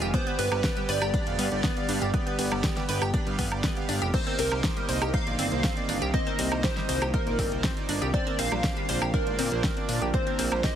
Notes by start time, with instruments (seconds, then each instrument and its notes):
0.02 analog synth bass F1, synth arpeggio sound G4 G5, closed hi-hat
0.14 analog synth pad D3 G3 B3 G4, synth arpeggio sound B3 B4, supersaw synth B3 G4 D5, synth pluck C5, digital synth lead C5, kick, closed hi-hat
0.27 synth arpeggio sound B3 B4, supersaw synth B3 G4 B4, closed hi-hat
0.39 analog synth bass G1, synth arpeggio sound B3 B4, digital synth lead B4, synth pluck B4, open hi-hat
0.52 analog synth bass G1, synth arpeggio sound G3 G4, supersaw synth B3 G4 D5, closed hi-hat, high woodblock
0.64 synth arpeggio sound G4 G5, kick, snare, closed hi-hat
0.77 synth arpeggio sound G3 G4, supersaw synth B3 G4 G5, closed hi-hat
0.89 analog synth bass G1, supersaw synth B3 G4 G5, synth arpeggio sound B4 B5, synth pluck D5, digital synth lead D5, open hi-hat
1.02 analog synth bass G1, synth arpeggio sound G4 G5, high woodblock
1.14 supersaw synth B3 G4 D5, synth arpeggio sound D4 D5, kick, closed hi-hat
1.27 analog synth bass F1, supersaw synth B3 G4 F5, closed hi-hat
1.39 analog synth bass G2, synth arpeggio sound B3 B4, open hi-hat
1.52 analog synth bass G1, supersaw synth B3 G4 D5, closed hi-hat
1.64 synth arpeggio sound B3 B4, kick, snare, closed hi-hat
1.77 supersaw synth B3 G4 F5, closed hi-hat
1.89 analog synth bass G2, supersaw synth B3 G4 F5, synth arpeggio sound D4 D5, open hi-hat
2.02 analog synth bass G1, synth arpeggio sound G4 G5, closed hi-hat
2.14 synth arpeggio sound B3 B4, supersaw synth B3 G4 D5, kick, closed hi-hat
2.27 synth arpeggio sound B3 B4, supersaw synth B3 G4 B4, closed hi-hat
2.39 analog synth bass G1, synth arpeggio sound B3 B4, open hi-hat
2.52 analog synth bass G1, synth arpeggio sound G3 G4, supersaw synth B3 G4 D5, closed hi-hat, high woodblock
2.64 synth arpeggio sound G4 G5, kick, snare, closed hi-hat
2.77 synth arpeggio sound G3 G4, supersaw synth B3 G4 G5, snare, closed hi-hat
2.89 analog synth bass G1, supersaw synth B3 G4 G5, synth arpeggio sound B4 B5, open hi-hat
3.02 analog synth bass G1, synth arpeggio sound G4 G5, closed hi-hat, high woodblock
3.14 supersaw synth B3 G4 D5, synth arpeggio sound D4 D5, kick, closed hi-hat
3.27 analog synth bass G2, supersaw synth B3 G4 F5, closed hi-hat
3.39 analog synth bass G1, synth arpeggio sound B3 B4, kick, open hi-hat
3.52 analog synth bass G1, supersaw synth B3 G4 D5, closed hi-hat, high woodblock
3.64 synth arpeggio sound B3 B4, kick, snare, closed hi-hat
3.77 supersaw synth B3 G4 F5, closed hi-hat
3.89 analog synth bass G1, supersaw synth B3 G4 F5, synth arpeggio sound D4 D5, open hi-hat
4.02 analog synth bass F1, synth arpeggio sound G4 G5, closed hi-hat
4.14 analog synth pad D#3 A#3 C4, supersaw synth A#3 D#4 C5, synth arpeggio sound C4 C5, synth pluck C5, digital synth lead C5, kick, closed hi-hat, crash
4.27 supersaw synth A#3 D#4 A#4, synth arpeggio sound C4 C5, closed hi-hat
4.39 analog synth bass C2, synth arpeggio sound C4 C5, synth pluck A#4, digital synth lead A#4, open hi-hat
4.52 analog synth bass C2, synth arpeggio sound G3 G4, supersaw synth A#3 D#4 C5, closed hi-hat, high woodblock
4.64 synth arpeggio sound G4 G5, kick, snare, closed hi-hat
4.77 synth arpeggio sound G3 G4, supersaw synth A#3 D#4 D#5, closed hi-hat
4.89 analog synth bass C2, supersaw synth A#3 D#4 D#5, synth arpeggio sound C5 C6, open hi-hat
5.02 analog synth bass C2, synth arpeggio sound G4 G5, closed hi-hat, high woodblock
5.14 supersaw synth A#3 D#4 C5, synth arpeggio sound D#4 D#5, digital synth lead F5, synth pluck F5, kick, closed hi-hat
5.27 analog synth bass A#1, supersaw synth A#3 D#4 D5, closed hi-hat
5.39 analog synth bass G1, synth arpeggio sound C4 C5, open hi-hat
5.52 analog synth bass C2, supersaw synth A#3 D#4 C5, closed hi-hat
5.64 synth arpeggio sound C4 C5, kick, snare, closed hi-hat
5.77 supersaw synth A#3 D#4 D5, closed hi-hat
5.89 analog synth bass G1, supersaw synth A#3 D#4 D5, synth arpeggio sound D4 D5, open hi-hat
6.02 analog synth bass C2, synth arpeggio sound G4 G5, closed hi-hat
6.14 supersaw synth A#3 D#4 C5, synth arpeggio sound C4 C5, analog synth pad F4, synth pluck D#5, digital synth lead D#5, kick, closed hi-hat
6.27 supersaw synth A#3 D#4 A#4, synth arpeggio sound C4 C5, closed hi-hat
6.39 analog synth bass C2, synth arpeggio sound C4 C5, open hi-hat
6.52 analog synth bass C2, synth arpeggio sound G3 G4, supersaw synth A#3 D#4 C5, closed hi-hat, high woodblock
6.64 synth arpeggio sound G4 G5, synth pluck C5, digital synth lead C5, kick, snare, closed hi-hat
6.77 synth arpeggio sound G3 G4, supersaw synth A#3 D#4 D#5, snare, closed hi-hat
6.89 analog synth bass C2, supersaw synth A#3 D#4 D#5, synth arpeggio sound C5 C6, open hi-hat
7.02 analog synth bass C2, synth arpeggio sound G4 G5, closed hi-hat, high woodblock
7.14 supersaw synth A#3 D#4 C5, synth arpeggio sound D#4 D#5, digital synth lead A#4, synth pluck A#4, kick, closed hi-hat
7.27 analog synth bass A#1, supersaw synth A#3 D#4 D5, closed hi-hat
7.39 analog synth bass G1, synth arpeggio sound C4 C5, kick, open hi-hat
7.52 analog synth bass C2, supersaw synth A#3 D#4 C5, closed hi-hat
7.64 synth arpeggio sound C4 C5, kick, snare, closed hi-hat
7.77 supersaw synth A#3 D#4 D5, closed hi-hat
7.89 analog synth bass G1, supersaw synth A#3 D#4 D5, synth arpeggio sound D4 D5, open hi-hat
8.02 analog synth bass C2, synth arpeggio sound G4 G5, closed hi-hat
8.14 analog synth pad D3 A#3 C4, supersaw synth A#3 D4 C5, synth arpeggio sound C4 C5, synth pluck D5, digital synth lead D5, kick, closed hi-hat
8.27 supersaw synth A#3 D4 A#4, synth arpeggio sound C4 C5, closed hi-hat
8.39 analog synth bass A#1, synth arpeggio sound C4 C5, synth pluck F5, digital synth lead F5, open hi-hat
8.52 analog synth bass A#1, synth arpeggio sound G3 G4, supersaw synth A#3 D4 C5, closed hi-hat, high woodblock
8.64 synth arpeggio sound G4 G5, kick, snare, closed hi-hat
8.77 synth arpeggio sound G3 G4, supersaw synth A#3 D4 F5, closed hi-hat
8.89 analog synth bass A#1, supersaw synth A#3 D4 F5, synth arpeggio sound C5 C6, open hi-hat
9.02 analog synth bass A#1, synth arpeggio sound G4 G5, closed hi-hat, high woodblock
9.14 supersaw synth A#3 D4 C5, synth arpeggio sound D4 D5, digital synth lead A#4, synth pluck A#4, kick, closed hi-hat
9.27 analog synth bass G#1, supersaw synth A#3 D4 D5, closed hi-hat
9.39 analog synth bass A#2, synth arpeggio sound C4 C5, open hi-hat
9.52 analog synth bass A#1, supersaw synth A#3 D4 C5, closed hi-hat
9.64 synth arpeggio sound C4 C5, kick, snare, closed hi-hat
9.77 supersaw synth A#3 D4 D5, closed hi-hat
9.89 analog synth bass A#2, supersaw synth A#3 D4 D5, synth arpeggio sound D4 D5, open hi-hat
10.02 analog synth bass A#1, synth arpeggio sound G4 G5, closed hi-hat
10.14 supersaw synth A#3 D4 C5, synth arpeggio sound C4 C5, synth pluck C5, digital synth lead C5, kick, closed hi-hat
10.27 supersaw synth A#3 D4 A#4, synth arpeggio sound C4 C5, closed hi-hat
10.39 analog synth bass A#1, synth arpeggio sound C4 C5, open hi-hat
10.52 analog synth bass A#1, synth arpeggio sound G3 G4, supersaw synth A#3 D4 C5, closed hi-hat, high woodblock
10.64 synth arpeggio sound G4 G5, synth pluck D#5, digital synth lead D#5, kick, snare, closed hi-hat